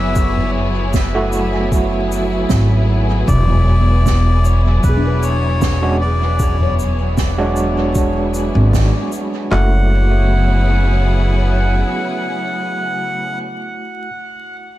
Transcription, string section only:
Already playing: F#3 B3 E4 G#4
9.52 C#3
9.64 F#3
9.76 B3
9.87 E4
9.99 G#4

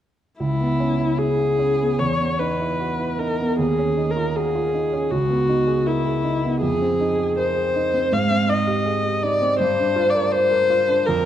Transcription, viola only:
0.40 E4
1.18 G#4
1.99 C#5
2.39 B4
3.18 A#4
3.59 G#4
4.11 A#4
4.36 G#4
5.11 F#4
5.86 E4
6.61 G#4
7.39 C5
8.13 F5
8.49 D#5
9.23 D5
9.59 C5
10.10 D5
10.31 C5
11.06 A#4

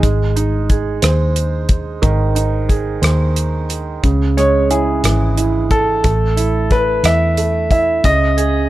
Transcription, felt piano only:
0.03 G#3
0.36 D#4
0.70 G#4
1.02 C5
2.02 D#3
2.35 D#4
2.69 G#4
3.02 C5
4.03 C#3
4.37 G#3
4.70 E4
5.05 E3
5.38 E4
6.04 A3
6.37 E4
6.70 A3
7.04 E4
7.38 A3
7.71 E4
8.04 C#3
8.37 G#4

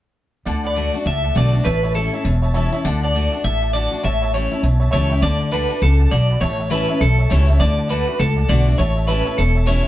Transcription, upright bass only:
0.46 D2
1.06 C#2
1.36 B1
1.66 A1
2.25 E1
2.85 D2
3.44 A1
4.04 A1
4.63 B1
4.93 C#2
5.22 D2
5.82 C#2
6.12 B1
6.41 A1
7.01 B1
7.31 C#2
7.60 D2
8.20 C#2
8.49 B1
8.79 A1
9.38 E1

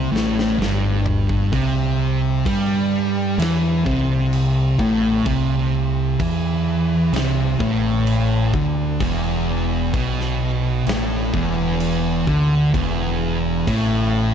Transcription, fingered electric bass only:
0.12 A1
0.59 G1
1.53 C2
2.46 G2
3.38 E2
3.86 C2
4.79 A1
5.26 C2
6.20 E2
7.13 C2
7.60 A1
8.54 D2
9.01 E1
9.93 B1
10.87 A1
11.33 E1
12.28 D2
12.74 E1
13.67 A1

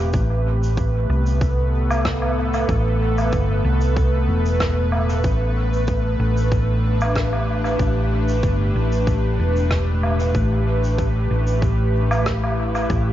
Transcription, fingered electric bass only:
Already playing: E1
0.14 A1
1.10 C2
2.69 A1
3.33 G1
3.65 C2
4.28 E1
5.24 A1
6.19 A1
7.80 A1
8.43 G1
8.76 A1
9.39 E1
10.35 A1
11.31 A1
12.90 A1

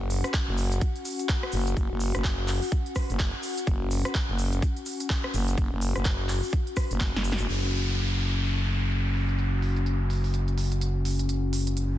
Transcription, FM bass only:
Already playing: F#1
0.48 F#1
1.53 F#1
1.91 F#1
2.15 F#1
3.10 F#1
3.67 F#1
4.29 F#1
5.34 F#1
5.72 F#1
5.96 F#1
6.91 F#1
7.15 F#1
7.38 F#1
7.48 F#1

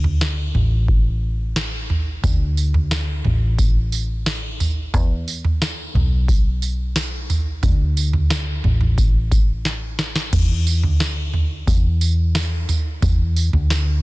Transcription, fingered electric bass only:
Already playing: D2
0.55 A1
2.24 D2
3.25 A1
4.94 E2
5.95 B1
7.63 D2
8.64 A1
10.33 E2
10.84 D2
11.67 E2
13.02 E2
13.53 D2

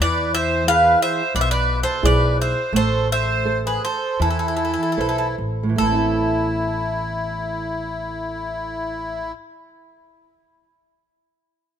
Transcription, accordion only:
0.02 B4
0.35 C5
0.69 B4
1.02 C5
1.35 B4
1.42 C5
1.50 B4
1.83 A4
2.05 B4
2.40 C5
2.75 A4
3.11 C5
3.65 G#4
3.84 A4
4.22 E4
5.80 E4

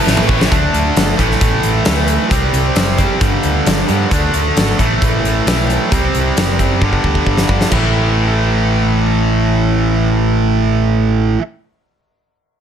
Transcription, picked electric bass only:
0.07 A1
0.29 A1
0.52 D2
0.74 D2
0.96 G1
1.19 A1
1.42 A1
1.64 A1
1.87 D2
2.31 C2
2.53 C2
2.76 F#1
3.21 G1
3.44 D2
3.66 G1
3.89 G2
4.11 D2
4.34 D2
4.57 G#1
4.80 A1
5.02 A1
5.24 A1
5.46 B1
5.92 C2
6.15 C2
6.38 F#1
6.82 G1
7.04 D2
7.27 G1
7.49 G2
7.72 A1

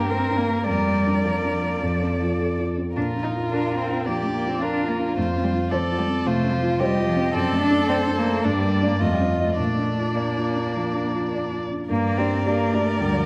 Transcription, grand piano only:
Already playing: G2 A#3 D4
0.11 A#4
0.31 D4
0.49 A#3
0.68 F2
0.88 A#3
1.06 D4
1.25 A#4
1.44 D4
1.64 A#3
1.83 F2
2.02 C4
2.21 F4
2.39 A4
2.59 F4
2.78 C4
2.97 A#2
3.15 D4
3.35 F4
3.52 A#4
3.71 F4
3.90 D4
4.08 F3
4.26 D4
4.45 F4
4.62 A#4
4.81 F4
5.00 D4
5.17 F2
5.36 C4
5.55 F4
5.72 C5
5.91 F4
6.09 C4
6.26 C3
6.44 C4
6.62 F4
6.81 C5
6.98 F4
7.16 C4
7.34 F#2
7.52 A3
7.71 D4
7.89 D5
8.07 D4
8.26 A3
8.44 G2
8.63 A#3
8.82 D4 D5
9.01 F2
9.21 C4
9.40 F4 D#5
9.59 A#2
9.78 D4
9.98 F4
10.17 D5
10.37 F4
10.56 D4
10.76 F3
10.94 D4
11.14 F4
11.33 D5
11.52 F4
11.71 D4
11.90 G2
12.18 D4 G4 D5
12.45 D4 G4 D5
12.73 D4 G4 D5
13.01 D2

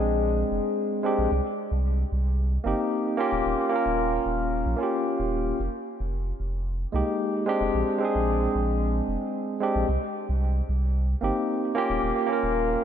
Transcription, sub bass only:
Already playing: A#1
0.51 F1
1.18 A#1
1.32 C2
1.71 C2
2.12 C2
2.66 G1
3.32 D#1
3.46 D#1
3.86 D#1
4.26 D#1
4.66 A#1
5.20 D#1
5.60 F1
6.00 F1
6.40 F1
6.94 C2
7.61 F1
7.74 A#1
8.15 A#1
8.55 A#1
9.08 F1
9.75 A#1
9.89 C2
10.29 C2
10.69 C2
11.23 G1
11.90 D#1
12.03 D#1
12.43 D#1

